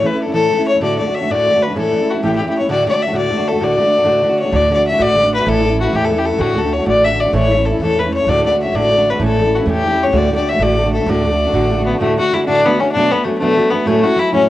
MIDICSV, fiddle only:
0, 0, Header, 1, 2, 480
1, 0, Start_track
1, 0, Key_signature, 2, "major"
1, 0, Tempo, 310881
1, 1244, Time_signature, 6, 3, 24, 8
1, 22373, End_track
2, 0, Start_track
2, 0, Title_t, "Fiddle"
2, 0, Program_c, 0, 110
2, 95, Note_on_c, 0, 71, 89
2, 240, Note_off_c, 0, 71, 0
2, 240, Note_on_c, 0, 71, 59
2, 337, Note_on_c, 0, 69, 83
2, 360, Note_off_c, 0, 71, 0
2, 508, Note_off_c, 0, 69, 0
2, 517, Note_on_c, 0, 69, 108
2, 981, Note_off_c, 0, 69, 0
2, 1049, Note_on_c, 0, 73, 85
2, 1246, Note_off_c, 0, 73, 0
2, 1279, Note_on_c, 0, 74, 90
2, 1513, Note_off_c, 0, 74, 0
2, 1520, Note_on_c, 0, 74, 82
2, 1763, Note_on_c, 0, 76, 91
2, 1787, Note_off_c, 0, 74, 0
2, 2022, Note_on_c, 0, 74, 114
2, 2045, Note_off_c, 0, 76, 0
2, 2501, Note_on_c, 0, 71, 91
2, 2524, Note_off_c, 0, 74, 0
2, 2708, Note_off_c, 0, 71, 0
2, 2741, Note_on_c, 0, 69, 92
2, 3247, Note_on_c, 0, 66, 76
2, 3270, Note_off_c, 0, 69, 0
2, 3441, Note_off_c, 0, 66, 0
2, 3457, Note_on_c, 0, 67, 84
2, 3601, Note_off_c, 0, 67, 0
2, 3634, Note_on_c, 0, 67, 69
2, 3776, Note_off_c, 0, 67, 0
2, 3851, Note_on_c, 0, 67, 87
2, 3946, Note_off_c, 0, 67, 0
2, 3977, Note_on_c, 0, 73, 80
2, 4153, Note_off_c, 0, 73, 0
2, 4182, Note_on_c, 0, 74, 98
2, 4407, Note_off_c, 0, 74, 0
2, 4453, Note_on_c, 0, 74, 88
2, 4665, Note_on_c, 0, 76, 85
2, 4688, Note_off_c, 0, 74, 0
2, 4870, Note_off_c, 0, 76, 0
2, 4899, Note_on_c, 0, 74, 99
2, 5370, Note_on_c, 0, 69, 84
2, 5393, Note_off_c, 0, 74, 0
2, 5612, Note_on_c, 0, 74, 96
2, 5635, Note_off_c, 0, 69, 0
2, 6777, Note_off_c, 0, 74, 0
2, 6786, Note_on_c, 0, 73, 82
2, 7040, Note_on_c, 0, 74, 103
2, 7063, Note_off_c, 0, 73, 0
2, 7292, Note_off_c, 0, 74, 0
2, 7309, Note_on_c, 0, 74, 89
2, 7504, Note_off_c, 0, 74, 0
2, 7521, Note_on_c, 0, 76, 95
2, 7749, Note_on_c, 0, 74, 123
2, 7772, Note_off_c, 0, 76, 0
2, 8231, Note_off_c, 0, 74, 0
2, 8250, Note_on_c, 0, 71, 89
2, 8466, Note_on_c, 0, 69, 110
2, 8490, Note_off_c, 0, 71, 0
2, 8950, Note_off_c, 0, 69, 0
2, 8963, Note_on_c, 0, 66, 85
2, 9198, Note_on_c, 0, 67, 105
2, 9221, Note_off_c, 0, 66, 0
2, 9333, Note_on_c, 0, 69, 88
2, 9356, Note_off_c, 0, 67, 0
2, 9546, Note_on_c, 0, 67, 95
2, 9569, Note_off_c, 0, 69, 0
2, 9654, Note_on_c, 0, 69, 88
2, 9677, Note_off_c, 0, 67, 0
2, 9892, Note_on_c, 0, 66, 100
2, 9915, Note_off_c, 0, 69, 0
2, 10162, Note_on_c, 0, 69, 89
2, 10185, Note_off_c, 0, 66, 0
2, 10390, Note_on_c, 0, 73, 88
2, 10414, Note_off_c, 0, 69, 0
2, 10604, Note_off_c, 0, 73, 0
2, 10613, Note_on_c, 0, 74, 124
2, 10872, Note_on_c, 0, 76, 102
2, 10895, Note_off_c, 0, 74, 0
2, 11116, Note_on_c, 0, 74, 89
2, 11139, Note_off_c, 0, 76, 0
2, 11329, Note_off_c, 0, 74, 0
2, 11338, Note_on_c, 0, 73, 105
2, 11817, Note_on_c, 0, 69, 86
2, 11840, Note_off_c, 0, 73, 0
2, 12043, Note_off_c, 0, 69, 0
2, 12070, Note_on_c, 0, 69, 105
2, 12338, Note_on_c, 0, 71, 93
2, 12361, Note_off_c, 0, 69, 0
2, 12551, Note_off_c, 0, 71, 0
2, 12566, Note_on_c, 0, 73, 94
2, 12800, Note_on_c, 0, 74, 106
2, 12823, Note_off_c, 0, 73, 0
2, 13050, Note_off_c, 0, 74, 0
2, 13057, Note_on_c, 0, 74, 85
2, 13256, Note_off_c, 0, 74, 0
2, 13317, Note_on_c, 0, 76, 81
2, 13516, Note_on_c, 0, 74, 107
2, 13539, Note_off_c, 0, 76, 0
2, 14048, Note_on_c, 0, 71, 83
2, 14071, Note_off_c, 0, 74, 0
2, 14240, Note_off_c, 0, 71, 0
2, 14274, Note_on_c, 0, 69, 98
2, 14744, Note_on_c, 0, 66, 79
2, 14767, Note_off_c, 0, 69, 0
2, 14948, Note_off_c, 0, 66, 0
2, 14987, Note_on_c, 0, 67, 100
2, 15484, Note_on_c, 0, 73, 89
2, 15507, Note_off_c, 0, 67, 0
2, 15704, Note_on_c, 0, 74, 100
2, 15727, Note_off_c, 0, 73, 0
2, 15944, Note_off_c, 0, 74, 0
2, 15991, Note_on_c, 0, 74, 85
2, 16184, Note_on_c, 0, 76, 89
2, 16207, Note_off_c, 0, 74, 0
2, 16401, Note_on_c, 0, 74, 101
2, 16424, Note_off_c, 0, 76, 0
2, 16867, Note_off_c, 0, 74, 0
2, 16877, Note_on_c, 0, 69, 84
2, 17134, Note_on_c, 0, 74, 96
2, 17158, Note_off_c, 0, 69, 0
2, 18299, Note_off_c, 0, 74, 0
2, 18309, Note_on_c, 0, 59, 77
2, 18517, Note_off_c, 0, 59, 0
2, 18524, Note_on_c, 0, 57, 94
2, 18776, Note_off_c, 0, 57, 0
2, 18817, Note_on_c, 0, 66, 107
2, 19050, Note_on_c, 0, 64, 85
2, 19073, Note_off_c, 0, 66, 0
2, 19218, Note_off_c, 0, 64, 0
2, 19228, Note_on_c, 0, 62, 127
2, 19533, Note_on_c, 0, 59, 111
2, 19556, Note_off_c, 0, 62, 0
2, 19757, Note_on_c, 0, 61, 96
2, 19780, Note_off_c, 0, 59, 0
2, 19934, Note_off_c, 0, 61, 0
2, 19943, Note_on_c, 0, 62, 121
2, 20247, Note_on_c, 0, 59, 106
2, 20270, Note_off_c, 0, 62, 0
2, 20442, Note_on_c, 0, 57, 83
2, 20465, Note_off_c, 0, 59, 0
2, 20653, Note_off_c, 0, 57, 0
2, 20662, Note_on_c, 0, 57, 120
2, 21158, Note_on_c, 0, 59, 100
2, 21181, Note_off_c, 0, 57, 0
2, 21412, Note_on_c, 0, 57, 102
2, 21435, Note_off_c, 0, 59, 0
2, 21673, Note_on_c, 0, 66, 111
2, 21696, Note_off_c, 0, 57, 0
2, 21910, Note_on_c, 0, 64, 104
2, 21933, Note_off_c, 0, 66, 0
2, 22129, Note_off_c, 0, 64, 0
2, 22136, Note_on_c, 0, 61, 109
2, 22370, Note_off_c, 0, 61, 0
2, 22373, End_track
0, 0, End_of_file